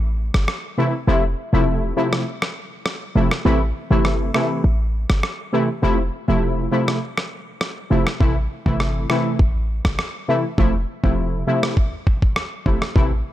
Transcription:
Already playing: A1
0.34 G1, cross-stick
0.48 cross-stick
0.78 C3 E3 A3 E4
1.07 F1 C3 F3 A3 E4
1.53 E1 C3 F3 A3 E4
1.96 C3 F3 A3 E4
2.13 cross-stick
2.42 cross-stick
2.86 cross-stick
3.15 F1 C3 F3 A3 E4
3.31 cross-stick
3.45 A1 C3 E3 A3 E4
3.90 G1 C3 E3 A3 E4
4.05 cross-stick
4.34 C3 E3 A3 E4, cross-stick
4.64 A1
5.10 G1, cross-stick
5.23 cross-stick
5.53 C3 E3 A3 E4
5.82 F1 C3 F3 A3 E4
6.28 E1 C3 F3 A3 E4
6.72 C3 F3 A3 E4
6.88 cross-stick
7.17 cross-stick
7.61 cross-stick
7.90 F1 C3 F3 A3 E4
8.07 cross-stick
8.20 A1 C3 E3 A3 E4, kick
8.66 G1 C3 E3 A3 E4, kick
8.80 cross-stick
9.09 C3 E3 A3 E4, cross-stick
9.39 A1, kick
9.85 G1, kick, cross-stick
9.99 cross-stick
10.28 C3 E3 A3 E4
10.58 F1 C3 F3 A3 E4, kick
11.03 E1 C3 F3 A3 E4, kick
11.47 C3 F3 A3 E4
11.63 cross-stick
11.77 kick
12.07 kick
12.22 kick
12.36 cross-stick
12.66 F1 C3 F3 A3 E4, kick
12.82 cross-stick
12.95 A1 C3 E3 A3 E4, kick

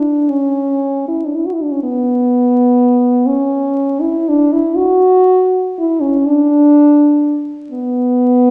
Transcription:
Already playing: D4
0.29 C#4
1.08 E4
1.25 D4
1.36 E4
1.46 F#4
1.53 E4
1.62 D4
1.71 C#4
1.83 B3
3.26 C#4
4.01 E4
4.29 D4
4.53 E4
4.77 F#4
5.79 E4
6.02 C#4
6.26 D4
7.71 B3

